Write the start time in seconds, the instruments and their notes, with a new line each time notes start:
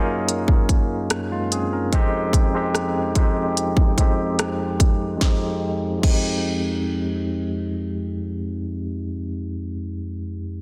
Already playing: tine electric piano F#2 A#3 C#4 D#4 F4 G#4
0.29 closed hi-hat
0.48 kick
0.69 kick, closed hi-hat
1.10 cross-stick, closed hi-hat
1.32 tine electric piano G#3 F4
1.52 tine electric piano C4 G#4, closed hi-hat
1.73 tine electric piano C#4 A#4
1.92 tine electric piano F2 G#3 C4 D#4 G4, kick, closed hi-hat
2.33 kick, closed hi-hat
2.54 tine electric piano F2 G#3 C4 D#4 G4
2.75 cross-stick, closed hi-hat
3.15 tine electric piano F2 G#3 C4 D#4 G4, kick, closed hi-hat
3.57 closed hi-hat
3.77 kick
3.98 tine electric piano F2 G#3 C4 D#4 G4, kick, closed hi-hat
4.39 cross-stick, closed hi-hat
4.80 kick, closed hi-hat
5.16 tine electric piano F2 G#3
5.21 tine electric piano C4 D#4, kick, snare
5.28 tine electric piano G4
5.98 tine electric piano F2 G#3
6.03 tine electric piano C4 D#4, kick, crash
6.10 tine electric piano G4